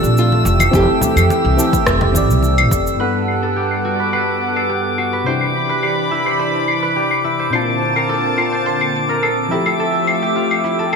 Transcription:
Already playing: C3 A3 C4 D4 F4 G4 A4 E6
0.03 A#1, cabasa
0.17 F4, cabasa
0.32 muted conga
0.45 F1 E3 G4, cabasa
0.60 muted conga, cabasa, claves
0.71 F1 C4 E4 G4, kick, high conga, cabasa
0.76 A4
1.01 muted conga, low conga, cabasa
1.16 F2, cabasa, claves
1.30 muted conga, cabasa
1.45 C2
1.57 C4 E4 G4 A4, cabasa
1.73 kick, muted conga, cabasa
1.87 F1, kick, cross-stick, cabasa
2.01 muted conga, low conga
2.12 C4 E4 G4, kick, high conga, cabasa
2.17 D5
2.30 C2, cabasa
2.43 muted conga, cabasa
2.58 claves
2.71 F1, kick, muted conga, cabasa
2.87 cabasa
2.97 G2 G3 B3 D4 A4 B4 F#5 D6, cabasa
3.02 A4
3.28 cabasa, claves
3.43 A4, cabasa
3.56 G4, cabasa
3.71 claves
3.85 F#4, cabasa
3.99 B4, cabasa
4.13 B4, cabasa, claves
4.42 cabasa
4.56 A4, cabasa, claves
4.69 G4, cabasa
4.98 F#4, cabasa, claves
5.13 B4, cabasa
5.24 C3 E3 D4 E4 C5 B5
5.29 G4
5.41 claves
5.55 cabasa
5.69 B4, cabasa
5.83 G4, cabasa, claves
6.11 E4, cabasa
6.26 C5, cabasa, claves
6.39 C5
6.68 cabasa, claves
6.83 B4, cabasa
6.96 G4, cabasa
7.11 claves
7.24 E4, cabasa
7.39 C5, cabasa
7.50 A#2 D3 A#3 C4 D4 F4 C5 A5, cabasa, claves
7.55 A5
7.82 cabasa
7.96 A#4, cabasa, claves
8.09 A4, cabasa
8.37 F4, cabasa, claves
8.52 C5, cabasa
8.66 C5, cabasa
8.81 claves
8.95 cabasa
9.09 A#4, cabasa
9.23 A4, cabasa, claves
9.49 F3 A3 C4 E4 G4 E5, cabasa
9.54 A4
9.66 A4, cabasa, claves
9.80 A4, cabasa
10.07 cabasa, claves
10.22 G4, cabasa
10.36 F4, cabasa
10.51 claves
10.64 E4, cabasa
10.79 A4, cabasa
10.93 A4

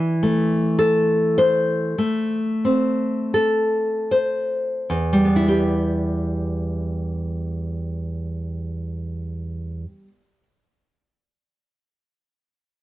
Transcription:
Already playing: E3
0.23 A3
0.79 A4
1.38 C5
1.98 A3
2.65 C4
3.34 A4
4.11 C5
4.90 E2
5.13 G3
5.25 B3
5.36 E4
5.48 G4

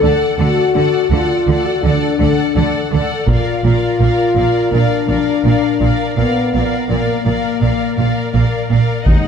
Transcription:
Already playing: A4
0.01 D2 D3 A4 D5 F#5
0.37 D2 D3 F#4 A4 D5 F#5
0.73 D2 D3 A4 D5 F#5
1.10 D2 D3 F4 A4 D5 F#5
1.47 D2 D3 A4 D5 F#5
1.64 F#4
1.83 D2 D3 D4 A4 D5 F#5
2.19 D2 D3 A4 D5 F#5
2.55 D2 D3 A4 D5 F#5
2.91 D2 D3 A4 D5 F#5
3.27 A#1 A#2 F4 A#4 D5 F5, taiko
3.63 A#1 A#2 A#4 D5 F5
3.99 A#1 A#2 A#4 D5 F5
4.36 A#1 A#2 A#4 D5 F5
4.72 A#1 A#2 D4 A#4 D5 F5
5.07 A#1 A#2 A#4 D5 F5
5.44 A#1 A#2 A#4 D5 F5
5.79 A#1 A#2 A#4 D5 F5
6.15 A#1 A#2 B3 D5 F5
6.20 A#4
6.53 A#1 A#2 A#4 D5 F5
6.88 A#1 A#2 A#3 A#4 D5 F5
7.25 A#1 A#2 A#4 D5 F5
7.60 A#1 A#2 A#4 D5 F5
7.96 A#1 A#2 A#4 D5 F5
8.32 A#1 A#2 A#4 D5 F5
8.69 A#1 A#2 A#4 D5 F5
9.05 D#2 D#3 G#3 D#4 D#5 F#5, taiko

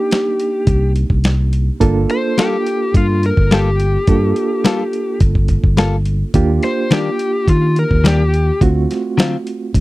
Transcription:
Already playing: A#3 D4 D#4 G4
0.11 snare, closed hi-hat
0.40 closed hi-hat
0.67 C2, kick, closed hi-hat
0.96 closed hi-hat
1.10 C2, kick
1.24 snare, closed hi-hat
1.53 closed hi-hat
1.80 G1 A#3 D4 F4 A4, kick, closed hi-hat
2.10 C5, closed hi-hat
2.38 G3 A#3 F4 G4 A4, snare, closed hi-hat
2.66 closed hi-hat
2.94 G2 F4, kick, closed hi-hat
3.23 A#4, closed hi-hat
3.37 G1, kick
3.51 G3 A#3 F4 G4 A4, snare, closed hi-hat
3.80 closed hi-hat
4.07 G2 A#3 D4 F4 A4, kick, closed hi-hat
4.36 closed hi-hat
4.65 G3 A#3 F4 A4, snare, closed hi-hat
4.93 closed hi-hat
5.20 G1, kick, closed hi-hat
5.35 kick
5.48 kick, closed hi-hat
5.64 G1, kick
5.77 G3 A#3 F4 A4, snare, closed hi-hat
6.05 closed hi-hat
6.34 D#2 A#3 D4 F4 G4, kick, closed hi-hat
6.63 C5, snare, closed hi-hat
6.91 D#3 G3 A#3 D4 G4, snare, closed hi-hat
7.19 closed hi-hat
7.47 D#3 F4, kick, closed hi-hat
7.76 A#4, closed hi-hat
7.91 D#2, kick
8.04 D#3 G3 A#3 D4 G4, snare, closed hi-hat
8.34 closed hi-hat
8.61 D2 A3 C4 F4 F#4, kick, closed hi-hat
8.91 snare, closed hi-hat
9.18 D3 F#3 C4 F4, snare, closed hi-hat
9.47 closed hi-hat
9.74 D2, kick, closed hi-hat

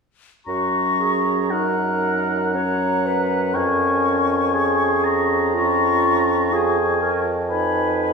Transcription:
0.46 F#2 C#4 F#4 A#5 C#6
1.00 G#4
1.50 D#4 A#4 F#5 A#5
2.53 C#4 C#5 F#5 A#5
3.06 B4
3.54 F2 A#4 G#5 C#6
4.53 G#4 G#5
5.04 A#5
5.53 C#4 F4 C#6
6.51 F4 G#4 G#5
7.01 A#4
7.49 D#4 B4 G#5 B5
8.00 B5

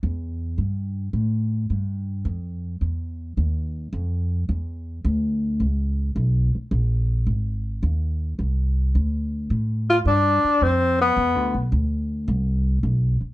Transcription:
0.03 E2
0.58 G2
1.13 A2
1.70 G2
2.25 F2
2.81 E2
3.37 D#2
3.93 F2
4.49 E2
5.05 D2
5.60 C#2
6.16 B1
6.55 muted upright bass stroke
6.71 A#1
7.27 G#1
7.83 D#2
8.39 C2
8.95 D2
9.50 A2
9.90 F4
10.05 G2 D4
10.44 muted upright bass stroke
10.61 F2 C4
11.01 B3
11.17 E2
11.35 D2
11.54 B1
11.72 D2
12.28 C2
12.83 B1
13.21 muted upright bass stroke

